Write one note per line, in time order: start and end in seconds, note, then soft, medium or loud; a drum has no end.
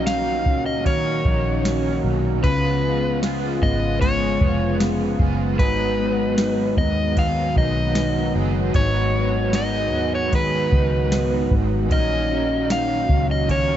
0.00 0.46 A#1 loud
0.00 0.83 A#2 medium
0.00 2.44 A#2 medium
0.00 0.85 D#3 medium
0.00 2.40 D#3 medium
0.00 0.86 F#3 medium
0.00 2.04 F#3 medium
0.00 2.40 F#3 medium
0.00 2.40 A#3 medium
0.00 0.46 C#4 medium
0.00 0.87 C#4 medium
0.00 2.40 C#4 medium
0.00 0.87 D#4 medium
0.00 2.40 F#4 medium
0.00 0.87 A#4 medium
0.07 1.24 D#4 medium
0.07 0.66 F5 loud
0.07 snare loud
0.07 ride medium
0.07 tambourine medium
0.46 1.21 C#2 loud
0.46 1.64 C#4 medium
0.46 kick medium
0.66 0.86 D#5 medium
0.84 2.43 A#2 medium
0.84 2.43 D#3 medium
0.84 2.43 F#3 loud
0.84 2.44 C#4 medium
0.84 2.00 C#5 medium
0.84 kick medium
0.84 ride medium
0.89 2.45 D#4 medium
0.89 2.45 A#4 loud
1.25 2.00 A#1 loud
1.25 2.43 D#4 medium
1.25 kick loud
1.65 2.82 C#4 medium
1.65 snare loud
1.65 ride medium
1.65 tambourine medium
2.04 2.44 B1 medium
2.04 2.52 F#3 medium
2.43 3.58 C#2 loud
2.43 3.22 C#3 medium
2.43 5.59 C#3 medium
2.43 5.56 C#3 medium
2.43 5.56 F3 medium
2.43 3.21 G#3 medium
2.43 11.87 G#3 medium
2.43 11.87 B3 medium
2.43 3.22 B3 medium
2.43 3.21 F4 medium
2.43 5.57 F4 medium
2.43 3.23 F4 medium
2.43 3.24 G#4 loud
2.43 3.19 B4 loud
2.43 kick loud
2.43 ride medium
2.83 3.62 B3 medium
3.22 4.01 G#3 medium
3.22 4.01 B3 medium
3.22 4.40 F4 medium
3.22 4.01 F4 medium
3.22 4.02 G#4 medium
3.22 snare loud
3.22 ride medium
3.22 tambourine medium
3.62 4.37 G#1 loud
3.62 4.80 B3 medium
3.62 4.01 D#5 loud
3.62 kick medium
4.00 5.19 C#3 medium
4.00 5.60 G#3 medium
4.00 5.20 G#3 medium
4.00 5.22 B3 loud
4.00 5.20 F4 medium
4.00 5.19 G#4 loud
4.00 4.76 C#5 loud
4.00 kick medium
4.00 ride medium
4.41 5.16 F1 medium
4.41 5.59 F4 medium
4.41 kick loud
4.80 5.99 B3 medium
4.80 snare loud
4.80 ride medium
4.80 tambourine medium
5.19 5.60 F#1 loud
5.19 8.35 G#3 medium
5.19 5.60 B3 soft
5.19 5.60 F4 soft
5.19 5.59 G#4 medium
5.19 kick loud
5.58 6.74 G#1 loud
5.58 7.15 G#2 medium
5.58 8.74 G#2 loud
5.58 13.77 D#3 medium
5.58 7.16 D#3 medium
5.58 11.87 F#3 medium
5.58 7.17 F#3 medium
5.58 7.16 B3 medium
5.58 6.38 D#4 medium
5.58 7.17 D#4 medium
5.58 13.77 F#4 medium
5.58 6.78 B4 medium
5.58 kick loud
5.58 ride medium
5.63 7.17 G#4 medium
6.00 6.77 B3 medium
6.38 7.57 D#4 medium
6.38 snare loud
6.38 ride medium
6.38 tambourine medium
6.77 7.52 D#2 medium
6.77 7.96 B3 medium
6.77 7.19 D#5 loud
6.77 kick loud
7.16 8.35 G#2 medium
7.16 8.74 D#3 medium
7.16 10.33 D#3 medium
7.16 8.37 F#3 medium
7.16 8.36 B3 medium
7.16 8.35 D#4 loud
7.16 8.34 G#4 loud
7.16 7.57 F5 loud
7.16 kick medium
7.16 ride medium
7.56 8.31 B1 loud
7.56 8.75 D#4 medium
7.56 8.32 D#5 loud
7.56 kick loud
7.95 9.14 B3 medium
7.95 snare loud
7.95 ride medium
7.95 tambourine medium
8.35 8.73 F#1 loud
8.35 11.52 F#3 medium
8.35 8.74 F#3 soft
8.35 8.74 B3 soft
8.35 8.74 D#4 soft
8.35 8.75 G#4 medium
8.74 9.93 G#1 loud
8.74 9.53 G#2 medium
8.74 11.91 G#2 loud
8.74 10.32 D#3 medium
8.74 9.52 F#3 medium
8.74 9.52 B3 medium
8.74 9.54 D#4 medium
8.74 9.54 G#4 medium
8.74 9.55 C#5 loud
8.74 kick loud
8.74 ride medium
9.15 9.93 B3 medium
9.52 10.32 F#3 medium
9.52 10.32 B3 medium
9.52 10.73 D#4 medium
9.52 10.34 D#4 medium
9.52 10.34 G#4 medium
9.52 10.15 D#5 loud
9.52 snare loud
9.52 ride medium
9.52 tambourine medium
9.93 10.68 D#2 loud
9.93 11.12 B3 medium
10.15 10.33 C#5 medium
10.31 11.88 G#2 medium
10.31 11.90 D#3 medium
10.31 12.35 D#3 medium
10.31 11.91 F#3 medium
10.31 11.91 B3 loud
10.31 11.92 D#4 medium
10.31 kick medium
10.31 ride medium
10.35 11.92 G#4 loud
10.35 11.53 B4 medium
10.72 11.47 C#2 loud
10.72 11.92 D#4 medium
10.72 kick loud
11.12 11.99 B3 medium
11.12 snare loud
11.12 ride medium
11.12 tambourine medium
11.51 11.91 G#1 loud
11.51 13.77 F#3 medium
11.51 kick loud
11.89 13.05 A#1 loud
11.89 13.47 A#2 medium
11.89 13.77 A#2 medium
11.89 13.47 D#3 medium
11.89 13.77 F#3 medium
11.89 13.48 F#3 medium
11.89 13.77 A#3 medium
11.89 13.77 C#4 medium
11.89 13.49 C#4 loud
11.89 12.70 D#4 medium
11.89 12.72 D#5 loud
11.89 kick loud
11.89 ride medium
11.93 13.49 D#4 medium
11.93 13.49 A#4 loud
12.32 13.09 C#4 medium
12.70 13.77 D#4 medium
12.70 13.26 F5 loud
12.70 snare loud
12.70 ride medium
12.70 tambourine medium
13.09 13.77 C#2 medium
13.09 13.77 C#4 medium
13.09 kick loud
13.31 13.50 D#5 medium
13.48 13.77 A#2 medium
13.48 13.77 D#3 medium
13.48 13.77 F#3 medium
13.48 13.77 C#4 medium
13.48 13.77 D#4 medium
13.48 13.77 A#4 loud
13.48 13.77 C#5 medium
13.48 kick medium
13.48 ride medium